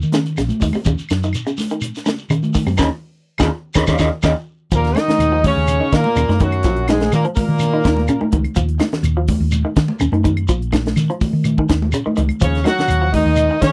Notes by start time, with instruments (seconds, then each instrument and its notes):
0.02 fingered electric bass D#3, shekere
0.12 clean electric guitar C#3, snare, closed hi-hat, high conga, shekere
0.26 closed hi-hat, shekere
0.37 fingered electric bass A#1, clean electric guitar C#3, snare, closed hi-hat, claves, shekere
0.49 closed hi-hat, high conga, shekere
0.60 fingered electric bass D#2, clean electric guitar D#3, kick, open hi-hat, high conga, low conga, shekere
0.73 clean electric guitar C3, muted fingered electric bass stroke, high conga, claves, shekere
0.85 fingered electric bass D#2, clean electric guitar C#3, kick, closed hi-hat, low conga, shekere
0.98 muted fingered electric bass stroke, closed hi-hat, shekere
1.09 fingered electric bass F#2, snare, closed hi-hat, claves, shekere
1.23 clean electric guitar D#3, closed hi-hat, shekere
1.33 closed hi-hat, claves, shekere
1.47 clean electric guitar C#3, closed hi-hat, shekere
1.58 snare, open hi-hat, high conga, shekere
1.70 clean electric guitar D#3, closed hi-hat, shekere
1.81 closed hi-hat, claves, shekere
1.95 snare, closed hi-hat, shekere
2.06 clean electric guitar C#3, snare, closed hi-hat, high conga, shekere
2.18 shekere
2.30 clean electric guitar C#3, fingered electric bass D#3, closed hi-hat, claves, shekere
2.43 closed hi-hat, high conga, shekere
2.54 clean electric guitar D#3, kick, open hi-hat, high conga, low conga, shekere
2.66 fingered electric bass F#2, clean electric guitar C3, high conga, claves, shekere
2.78 fingered electric bass D#2, clean electric guitar A#2 C#3 D#3, kick, snare, low conga, claves, shekere
3.38 fingered electric bass D#2, clean electric guitar A#2 C#3 D#3, kick, snare, low conga, claves, shekere
3.74 fingered electric bass D#2, clean electric guitar A#2 C#3 D#3, kick, snare, low conga, claves, shekere
3.87 fingered electric bass D#2, clean electric guitar A#2 C#3 D#3, kick, snare, low conga, claves, shekere
3.98 fingered electric bass D#2, clean electric guitar A#2 C#3 D#3, kick, snare, low conga, claves, shekere
4.23 fingered electric bass D#2, clean electric guitar A#2 C#3 D#3, kick, snare, low conga, claves, shekere
4.72 fingered electric bass D#2, bass trombone A#2, clean electric guitar F3, horn section A#3 A#4, alto saxophone A#3, kick, closed hi-hat, shekere
4.84 snare, closed hi-hat
4.95 clean electric guitar D#3, bass trombone D#3, horn section D#4 D#5, snare, closed hi-hat, high conga, claves, shekere
4.99 alto saxophone D#4
5.08 snare, closed hi-hat, high conga, low conga
5.19 fingered electric bass D#2, closed hi-hat, claves, shekere
5.32 clean electric guitar F3
5.44 bass trombone C#3, horn section C#4 C#5, alto saxophone C#4, kick, open hi-hat, high conga, low conga, shekere
5.57 fingered electric bass D#2
5.68 closed hi-hat, claves, shekere
5.80 clean electric guitar D#3
5.92 bass trombone A#2, clean electric guitar D#3, fingered electric bass D#3, alto saxophone A#3, horn section A#3 A#4, kick, snare, closed hi-hat, shekere
6.04 high conga
6.16 fingered electric bass D#2, clean electric guitar C#3, closed hi-hat, claves, shekere
6.29 fingered electric bass F#2, clean electric guitar D#3, snare, closed hi-hat, high conga
6.40 bass trombone F#2, clean electric guitar D#3, horn section F#3 F#4, alto saxophone F#3, kick, closed hi-hat, low conga, shekere
6.52 closed hi-hat, claves
6.63 fingered electric bass A#1, clean electric guitar F3, kick, snare, closed hi-hat, shekere
6.77 closed hi-hat
6.88 bass trombone G#2, clean electric guitar D#3, horn section G#3 G#4, snare, closed hi-hat, high conga, claves, shekere
6.92 alto saxophone G#3
7.00 snare, closed hi-hat, high conga
7.12 bass trombone A#2, fingered electric bass D#3, horn section A#3 A#4, alto saxophone A#3, snare, closed hi-hat, claves, shekere
7.25 clean electric guitar F3, closed hi-hat
7.35 bass trombone A#2, horn section A#3 A#4, alto saxophone A#3, kick, open hi-hat, high conga, low conga, shekere
7.49 fingered electric bass D#3
7.59 snare, closed hi-hat, claves, shekere
7.74 clean electric guitar D#3
7.84 fingered electric bass D#2, clean electric guitar D#3, kick, snare, closed hi-hat, shekere
7.96 snare, high conga
8.08 clean electric guitar C#3, closed hi-hat, claves, shekere
8.21 clean electric guitar D#3, muted fingered electric bass stroke, high conga
8.32 fingered electric bass C#2, clean electric guitar D#3, kick, closed hi-hat, low conga, shekere
8.44 muted fingered electric bass stroke, closed hi-hat, claves
8.56 fingered electric bass D#2, clean electric guitar F3, kick, closed hi-hat, shekere
8.69 closed hi-hat
8.79 clean electric guitar D#3, snare, closed hi-hat, high conga, claves, shekere
8.92 snare, closed hi-hat, low conga
9.03 fingered electric bass D#2, closed hi-hat, claves, shekere
9.17 clean electric guitar F3
9.28 kick, open hi-hat, high conga, low conga, shekere
9.40 fingered electric bass D#2
9.52 closed hi-hat, high conga, claves, shekere
9.65 clean electric guitar D#3
9.76 fingered electric bass D#3, muted clean electric guitar stroke, kick, snare, closed hi-hat, shekere
9.88 high conga
10.00 fingered electric bass D#2, clean electric guitar C#3, closed hi-hat, claves, shekere
10.12 fingered electric bass F#2, clean electric guitar D#3, closed hi-hat, high conga
10.24 clean electric guitar D#3, kick, closed hi-hat, low conga, shekere
10.37 closed hi-hat, claves
10.48 fingered electric bass A#1, clean electric guitar F3, kick, closed hi-hat, shekere
10.62 closed hi-hat
10.72 clean electric guitar D#3, kick, snare, closed hi-hat, high conga, claves, shekere
10.85 snare, closed hi-hat, high conga
10.96 fingered electric bass D#3, snare, closed hi-hat, claves, shekere
11.10 clean electric guitar F3, closed hi-hat
11.21 kick, open hi-hat, high conga, low conga, shekere
11.33 fingered electric bass D#3
11.44 closed hi-hat, high conga, claves, shekere
11.58 clean electric guitar D#3, kick
11.69 fingered electric bass D#2, clean electric guitar D#3, kick, snare, closed hi-hat, shekere
11.82 high conga
11.92 clean electric guitar C#3, closed hi-hat, claves, shekere
12.06 clean electric guitar D#3, muted fingered electric bass stroke, high conga
12.16 fingered electric bass C#2, clean electric guitar D#3, closed hi-hat, high conga, low conga, shekere
12.29 muted fingered electric bass stroke, closed hi-hat, claves
12.41 fingered electric bass D#2, bass trombone C#3, clean electric guitar F3, horn section C#4 C#5, alto saxophone C#4, kick, closed hi-hat, shekere
12.55 snare, closed hi-hat
12.64 clean electric guitar D#3, bass trombone F#3, alto saxophone F#4, horn section F#4 F#5, snare, closed hi-hat, high conga, claves, shekere
12.79 snare, closed hi-hat, low conga
12.88 fingered electric bass D#2, closed hi-hat, claves, shekere
13.02 clean electric guitar F3
13.12 bass trombone D#3, horn section D#4 D#5, alto saxophone D#4, kick, open hi-hat, high conga, low conga, shekere
13.25 fingered electric bass D#2
13.36 closed hi-hat, high conga, claves, shekere
13.51 clean electric guitar D#3
13.61 bass trombone C#3, fingered electric bass D#3, clean electric guitar D#3, horn section C#4 C#5, alto saxophone C#4, kick, snare, closed hi-hat, shekere